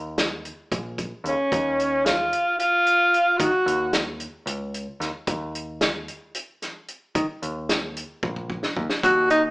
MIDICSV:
0, 0, Header, 1, 4, 480
1, 0, Start_track
1, 0, Key_signature, -6, "minor"
1, 0, Tempo, 537153
1, 1348, Time_signature, 7, 3, 24, 8
1, 8494, End_track
2, 0, Start_track
2, 0, Title_t, "Tenor saxophone"
2, 0, Program_c, 0, 66
2, 1140, Note_on_c, 0, 61, 78
2, 1835, Note_on_c, 0, 65, 77
2, 1848, Note_off_c, 0, 61, 0
2, 2304, Note_off_c, 0, 65, 0
2, 2309, Note_on_c, 0, 65, 84
2, 3016, Note_on_c, 0, 66, 86
2, 3029, Note_off_c, 0, 65, 0
2, 3559, Note_off_c, 0, 66, 0
2, 8074, Note_on_c, 0, 66, 92
2, 8295, Note_off_c, 0, 66, 0
2, 8313, Note_on_c, 0, 63, 85
2, 8420, Note_off_c, 0, 63, 0
2, 8494, End_track
3, 0, Start_track
3, 0, Title_t, "Picked electric bass"
3, 0, Program_c, 1, 34
3, 0, Note_on_c, 1, 39, 72
3, 453, Note_off_c, 1, 39, 0
3, 641, Note_on_c, 1, 34, 75
3, 998, Note_off_c, 1, 34, 0
3, 1108, Note_on_c, 1, 39, 78
3, 1198, Note_off_c, 1, 39, 0
3, 1361, Note_on_c, 1, 39, 88
3, 2078, Note_off_c, 1, 39, 0
3, 3039, Note_on_c, 1, 51, 80
3, 3124, Note_off_c, 1, 51, 0
3, 3270, Note_on_c, 1, 39, 83
3, 3810, Note_off_c, 1, 39, 0
3, 3984, Note_on_c, 1, 37, 82
3, 4345, Note_off_c, 1, 37, 0
3, 4469, Note_on_c, 1, 39, 83
3, 4557, Note_off_c, 1, 39, 0
3, 4715, Note_on_c, 1, 39, 96
3, 5434, Note_off_c, 1, 39, 0
3, 6392, Note_on_c, 1, 51, 80
3, 6479, Note_off_c, 1, 51, 0
3, 6634, Note_on_c, 1, 39, 81
3, 7174, Note_off_c, 1, 39, 0
3, 7355, Note_on_c, 1, 34, 78
3, 7714, Note_off_c, 1, 34, 0
3, 7834, Note_on_c, 1, 39, 81
3, 7922, Note_off_c, 1, 39, 0
3, 8076, Note_on_c, 1, 39, 88
3, 8494, Note_off_c, 1, 39, 0
3, 8494, End_track
4, 0, Start_track
4, 0, Title_t, "Drums"
4, 160, Note_on_c, 9, 38, 101
4, 160, Note_on_c, 9, 42, 66
4, 249, Note_off_c, 9, 38, 0
4, 249, Note_off_c, 9, 42, 0
4, 401, Note_on_c, 9, 42, 56
4, 491, Note_off_c, 9, 42, 0
4, 640, Note_on_c, 9, 36, 95
4, 640, Note_on_c, 9, 42, 71
4, 729, Note_off_c, 9, 36, 0
4, 730, Note_off_c, 9, 42, 0
4, 878, Note_on_c, 9, 36, 69
4, 879, Note_on_c, 9, 42, 52
4, 967, Note_off_c, 9, 36, 0
4, 969, Note_off_c, 9, 42, 0
4, 1120, Note_on_c, 9, 42, 49
4, 1209, Note_off_c, 9, 42, 0
4, 1357, Note_on_c, 9, 36, 102
4, 1361, Note_on_c, 9, 42, 69
4, 1447, Note_off_c, 9, 36, 0
4, 1450, Note_off_c, 9, 42, 0
4, 1604, Note_on_c, 9, 42, 57
4, 1693, Note_off_c, 9, 42, 0
4, 1840, Note_on_c, 9, 38, 97
4, 1840, Note_on_c, 9, 42, 70
4, 1929, Note_off_c, 9, 38, 0
4, 1929, Note_off_c, 9, 42, 0
4, 2079, Note_on_c, 9, 42, 57
4, 2168, Note_off_c, 9, 42, 0
4, 2319, Note_on_c, 9, 42, 72
4, 2408, Note_off_c, 9, 42, 0
4, 2560, Note_on_c, 9, 42, 59
4, 2650, Note_off_c, 9, 42, 0
4, 2805, Note_on_c, 9, 42, 56
4, 2895, Note_off_c, 9, 42, 0
4, 3035, Note_on_c, 9, 36, 96
4, 3037, Note_on_c, 9, 42, 86
4, 3124, Note_off_c, 9, 36, 0
4, 3126, Note_off_c, 9, 42, 0
4, 3284, Note_on_c, 9, 42, 62
4, 3374, Note_off_c, 9, 42, 0
4, 3513, Note_on_c, 9, 38, 96
4, 3513, Note_on_c, 9, 42, 70
4, 3602, Note_off_c, 9, 38, 0
4, 3602, Note_off_c, 9, 42, 0
4, 3751, Note_on_c, 9, 42, 61
4, 3840, Note_off_c, 9, 42, 0
4, 3992, Note_on_c, 9, 42, 79
4, 4082, Note_off_c, 9, 42, 0
4, 4237, Note_on_c, 9, 42, 56
4, 4326, Note_off_c, 9, 42, 0
4, 4479, Note_on_c, 9, 38, 32
4, 4479, Note_on_c, 9, 42, 54
4, 4568, Note_off_c, 9, 38, 0
4, 4568, Note_off_c, 9, 42, 0
4, 4710, Note_on_c, 9, 42, 73
4, 4712, Note_on_c, 9, 36, 97
4, 4800, Note_off_c, 9, 42, 0
4, 4801, Note_off_c, 9, 36, 0
4, 4958, Note_on_c, 9, 42, 57
4, 5048, Note_off_c, 9, 42, 0
4, 5192, Note_on_c, 9, 38, 100
4, 5192, Note_on_c, 9, 42, 70
4, 5281, Note_off_c, 9, 38, 0
4, 5281, Note_off_c, 9, 42, 0
4, 5433, Note_on_c, 9, 42, 51
4, 5523, Note_off_c, 9, 42, 0
4, 5670, Note_on_c, 9, 42, 68
4, 5759, Note_off_c, 9, 42, 0
4, 5917, Note_on_c, 9, 38, 33
4, 5917, Note_on_c, 9, 42, 54
4, 6006, Note_off_c, 9, 38, 0
4, 6006, Note_off_c, 9, 42, 0
4, 6150, Note_on_c, 9, 42, 53
4, 6240, Note_off_c, 9, 42, 0
4, 6390, Note_on_c, 9, 42, 77
4, 6391, Note_on_c, 9, 36, 101
4, 6479, Note_off_c, 9, 42, 0
4, 6480, Note_off_c, 9, 36, 0
4, 6635, Note_on_c, 9, 42, 60
4, 6724, Note_off_c, 9, 42, 0
4, 6874, Note_on_c, 9, 38, 98
4, 6874, Note_on_c, 9, 42, 72
4, 6964, Note_off_c, 9, 38, 0
4, 6964, Note_off_c, 9, 42, 0
4, 7118, Note_on_c, 9, 42, 59
4, 7207, Note_off_c, 9, 42, 0
4, 7353, Note_on_c, 9, 36, 97
4, 7442, Note_off_c, 9, 36, 0
4, 7473, Note_on_c, 9, 36, 56
4, 7563, Note_off_c, 9, 36, 0
4, 7592, Note_on_c, 9, 36, 72
4, 7681, Note_off_c, 9, 36, 0
4, 7711, Note_on_c, 9, 38, 60
4, 7800, Note_off_c, 9, 38, 0
4, 7833, Note_on_c, 9, 36, 80
4, 7922, Note_off_c, 9, 36, 0
4, 7949, Note_on_c, 9, 38, 75
4, 8038, Note_off_c, 9, 38, 0
4, 8073, Note_on_c, 9, 36, 97
4, 8078, Note_on_c, 9, 42, 73
4, 8163, Note_off_c, 9, 36, 0
4, 8168, Note_off_c, 9, 42, 0
4, 8312, Note_on_c, 9, 42, 57
4, 8401, Note_off_c, 9, 42, 0
4, 8494, End_track
0, 0, End_of_file